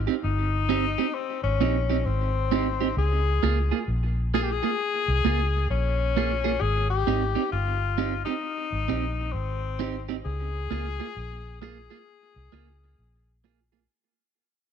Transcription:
0.07 C4 D#4 G4
0.24 G1 D#4
0.69 C4 D#4 G4
0.98 C4 D#4 G4
1.14 C4
1.43 G#1 C#4
1.61 A#1 C4 D#4 G4
1.89 C4 D#4 G4
2.05 G#1 C4
2.52 C4 D#4 G4
2.81 C4 D#4 G4
2.97 C#2 G#4
3.43 C#2 A#3 F4 G#4
3.71 A#3 F4 G#4
3.88 A#1
4.34 A#3 F4 G#4
4.43 G4
4.51 G#4
4.63 A#3 F4 G#4
5.08 C2
5.25 C#2 A#3 F4 G#4
5.70 A#1 C#4
6.16 A#3 F4 G#4
6.44 A#3 F4 G#4
6.61 G#1 G#4
6.90 G4
7.07 G#1 C4 D#4 G4
7.35 C4 D#4 G4
7.52 G1 F4
7.98 C4 D#4 G4
8.25 C4 D#4 G4
8.72 G#1
8.88 A#1 C4 D#4 G4
9.32 G#1 C4
9.79 C4 D#4 G4
10.09 C4 D#4 G4
10.24 C#2 G#4
10.71 C#2 A#3 F4 G#4
11.00 A#3 F4 G#4
11.17 A#1
11.61 A#3 F4 G#4
11.90 A#3 F4 G#4
12.36 C2
12.52 C#2 A#3 F4 G#4
12.99 A#1
13.44 A#3 F4 G#4
13.72 A#3 F4 G#4

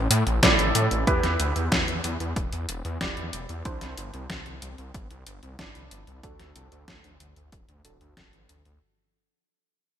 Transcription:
Already playing: E4 A4 C5
0.10 A2, closed hi-hat
0.27 A1, closed hi-hat
0.43 A2 E4 A4 D5, kick, snare, closed hi-hat
0.59 A1, closed hi-hat
0.75 A2, closed hi-hat
0.91 A1, closed hi-hat
1.07 E2 E4 G4 B4, kick, closed hi-hat
1.23 E2, snare, closed hi-hat
1.40 D2, closed hi-hat
1.56 E2, closed hi-hat
1.72 E2, kick, snare, closed hi-hat
1.88 E2, closed hi-hat
2.04 E2, closed hi-hat
2.20 E2, closed hi-hat
2.36 E1, kick, closed hi-hat
2.53 E2, closed hi-hat
2.69 E1, closed hi-hat
2.85 E2, closed hi-hat
3.01 E1 E4 G4 D5, kick, snare, closed hi-hat
3.17 E2, closed hi-hat
3.33 E1, closed hi-hat
3.49 E2, closed hi-hat
3.65 C2 D4 E4 C5, kick, closed hi-hat
3.81 C2, snare, closed hi-hat
3.98 G1, closed hi-hat
4.14 C2, closed hi-hat
4.30 C2, kick, snare, closed hi-hat
4.46 C2, closed hi-hat
4.62 C2, closed hi-hat
4.78 C2, closed hi-hat
4.94 G1, kick, closed hi-hat
5.11 C2, closed hi-hat
5.27 G1, closed hi-hat
5.43 C2, closed hi-hat
5.59 G1 D4 E4 D5, kick, snare, closed hi-hat
5.75 C2, closed hi-hat
5.91 G1, closed hi-hat
6.07 C2, closed hi-hat
6.23 D2 D4 F#4 A4, kick, closed hi-hat
6.40 D2, snare, closed hi-hat
6.56 C2, closed hi-hat
6.72 D2, closed hi-hat
6.88 D2, kick, snare, closed hi-hat
7.04 D2, closed hi-hat
7.20 D2, closed hi-hat
7.36 D2, closed hi-hat
7.52 D1, kick, closed hi-hat
7.69 D2, closed hi-hat
7.85 D1 D4 F#4 A4, closed hi-hat
8.01 D2, closed hi-hat
8.17 D1, kick, snare, closed hi-hat
8.33 A1, closed hi-hat
8.49 D2, closed hi-hat
8.65 D2, closed hi-hat

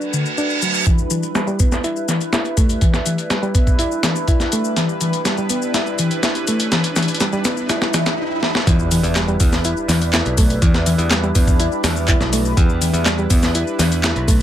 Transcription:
Already playing: A3 D4 F#4 B4, reverse cymbal
0.01 shaker
0.13 D3, shaker
0.26 shaker
0.38 D4, shaker
0.50 shaker
0.62 F#3, shaker
0.74 shaker
0.86 E3 G3 D4 E4 B4, kick, closed hi-hat, riser, shaker
0.98 shaker
1.10 E3, closed hi-hat, shaker
1.23 closed hi-hat, shaker
1.35 G3, snare, closed hi-hat, shaker
1.47 G3, shaker
1.59 B3, kick, closed hi-hat, shaker
1.72 snare, shaker
1.84 E4, closed hi-hat, shaker
1.96 shaker
2.08 E3, snare, closed hi-hat, shaker
2.21 closed hi-hat, shaker
2.33 E4, snare, closed hi-hat, shaker
2.45 closed hi-hat, shaker
2.57 A3, kick, closed hi-hat, shaker
2.69 closed hi-hat, shaker
2.81 E3, kick, closed hi-hat, shaker
2.94 snare, shaker
3.06 E3, closed hi-hat, shaker
3.18 closed hi-hat, shaker
3.30 G3, snare, closed hi-hat, shaker
3.43 G3, shaker
3.55 B3, kick, closed hi-hat, shaker
3.67 kick, shaker
3.79 E4, closed hi-hat, shaker
3.92 shaker
4.03 E3, snare, closed hi-hat, shaker
4.16 shaker
4.28 E4, kick, closed hi-hat, shaker
4.40 snare, shaker
4.52 A3, closed hi-hat, shaker
4.64 shaker
4.76 E3, snare, closed hi-hat, shaker
4.89 shaker
5.01 E3, closed hi-hat, shaker
5.13 closed hi-hat, shaker
5.25 G3, snare, closed hi-hat, shaker
5.37 G3, shaker
5.50 B3, closed hi-hat, shaker
5.62 shaker
5.74 E4, snare, closed hi-hat, shaker
5.86 shaker
5.98 E3, closed hi-hat, shaker
6.11 closed hi-hat, shaker
6.23 E4, snare, closed hi-hat, shaker
6.35 closed hi-hat, shaker
6.47 A3, closed hi-hat, shaker
6.60 closed hi-hat, shaker
6.72 E3, snare, closed hi-hat, shaker
6.84 closed hi-hat, shaker
6.96 E3, snare, closed hi-hat, shaker
7.02 closed hi-hat
7.08 closed hi-hat, shaker
7.14 closed hi-hat
7.20 G3, snare, closed hi-hat, shaker
7.33 G3, shaker
7.45 B3, snare, closed hi-hat, shaker
7.57 shaker
7.69 E4, snare, closed hi-hat, swell, shaker
7.81 snare, shaker
7.93 E3, snare, closed hi-hat, shaker
8.06 snare, closed hi-hat, shaker
8.43 snare
8.55 snare
8.67 E2 E3 G3 D4 E4 B4, kick, closed hi-hat, impact, shaker
8.79 shaker
8.91 E3, closed hi-hat, open hi-hat, shaker
9.03 E2, closed hi-hat, shaker
9.16 G3, snare, clap, closed hi-hat, shaker
9.28 G3, shaker
9.40 E2 B3, kick, closed hi-hat, open hi-hat, shaker
9.52 snare, shaker
9.64 E4, closed hi-hat, shaker
9.77 shaker
9.88 E2 E3, snare, closed hi-hat, open hi-hat, shaker
10.01 closed hi-hat, shaker
10.13 E4, snare, clap, closed hi-hat, shaker
10.25 B1, closed hi-hat, shaker
10.37 A3, kick, closed hi-hat, open hi-hat, shaker
10.50 closed hi-hat, shaker
10.62 E2 E3, kick, closed hi-hat, shaker
10.74 snare, shaker
10.86 E3, closed hi-hat, open hi-hat, shaker
10.98 E2, closed hi-hat, shaker
11.11 G3, snare, clap, closed hi-hat, shaker
11.23 G3, shaker
11.35 E2 B3, kick, closed hi-hat, open hi-hat, shaker
11.48 kick, shaker
11.60 E4, closed hi-hat, shaker
11.72 shaker
11.84 E2 E3, snare, closed hi-hat, open hi-hat, shaker
11.96 shaker
12.08 E4, kick, clap, closed hi-hat, shaker
12.21 B1, snare, shaker
12.33 A3, closed hi-hat, open hi-hat, shaker
12.45 shaker
12.57 E2 E3, kick, closed hi-hat, shaker
12.69 shaker
12.81 E3, closed hi-hat, open hi-hat, shaker
12.93 E2, closed hi-hat, shaker
13.06 G3, snare, clap, closed hi-hat, shaker
13.18 G3, shaker
13.30 E2 B3, kick, closed hi-hat, open hi-hat, shaker
13.43 snare, shaker
13.55 E4, closed hi-hat, shaker
13.67 shaker
13.79 E2 E3, snare, closed hi-hat, open hi-hat, shaker
13.92 closed hi-hat, shaker
14.04 E4, snare, clap, closed hi-hat, shaker
14.16 B1, closed hi-hat, shaker
14.28 A3, kick, closed hi-hat, open hi-hat, shaker

